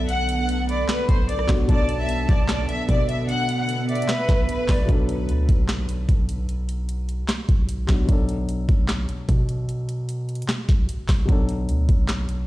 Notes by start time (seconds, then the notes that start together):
Already playing: B1 B2 D3 F#3 B3 D4 A4
0.09 F#5, closed hi-hat
0.29 F#5, closed hi-hat
0.39 F#5
0.49 closed hi-hat
0.69 D5 B5, closed hi-hat
0.88 B4, snare, clap, closed hi-hat
1.09 B1 C5, kick, closed hi-hat
1.29 D5, closed hi-hat
1.39 cross-stick
1.47 B1 B2 F#3 D4 F#4, kick, snare, clap, closed hi-hat
1.66 B1 B2 D3 F#3 B3 A4 D5 A5, kick, closed hi-hat
1.70 D4 A4
1.89 closed hi-hat
1.99 E5
2.09 closed hi-hat
2.29 B1 D5, kick, closed hi-hat
2.48 D5, snare, clap, closed hi-hat
2.69 E5, closed hi-hat
2.89 B2 D5, kick, closed hi-hat
3.09 E5, closed hi-hat
3.29 F#5, closed hi-hat
3.49 F#5, closed hi-hat
3.59 F#5
3.69 closed hi-hat
3.89 D5 E5, closed hi-hat
3.95 closed hi-hat
4.02 closed hi-hat
4.08 B4, snare, clap, closed hi-hat
4.29 B1, kick, snare, closed hi-hat
4.49 B4, closed hi-hat
4.68 B1 D5, kick, snare, clap, open hi-hat
4.85 B1 B2 F#3, kick, closed hi-hat
4.90 D4 A4
5.09 closed hi-hat
5.29 D2, closed hi-hat
5.49 B1, kick, closed hi-hat
5.68 snare, clap, closed hi-hat
5.89 closed hi-hat
6.09 B1, kick, closed hi-hat
6.29 closed hi-hat
6.49 closed hi-hat
6.69 closed hi-hat
6.89 closed hi-hat
7.09 closed hi-hat
7.28 snare, clap, closed hi-hat
7.49 B1, kick, closed hi-hat
7.69 closed hi-hat
7.87 B1 B2 F#3 D4 F#4, kick, snare, clap, closed hi-hat
8.05 B1 B2 F#3, kick, closed hi-hat
8.10 D4 A4
8.29 closed hi-hat
8.49 closed hi-hat
8.69 B1, kick, closed hi-hat
8.88 snare, clap, closed hi-hat
9.09 closed hi-hat
9.29 B2, kick, closed hi-hat
9.49 closed hi-hat
9.69 closed hi-hat
9.89 closed hi-hat
10.09 closed hi-hat
10.29 closed hi-hat
10.35 closed hi-hat
10.42 closed hi-hat
10.48 snare, clap, closed hi-hat
10.69 B1, kick, snare, closed hi-hat
10.89 closed hi-hat
11.08 B1, kick, snare, clap, open hi-hat
11.25 B1 B2 F#3, kick, closed hi-hat
11.30 D4 A4
11.49 closed hi-hat
11.69 D2, closed hi-hat
11.89 B1, kick, closed hi-hat
12.08 snare, clap, closed hi-hat
12.29 closed hi-hat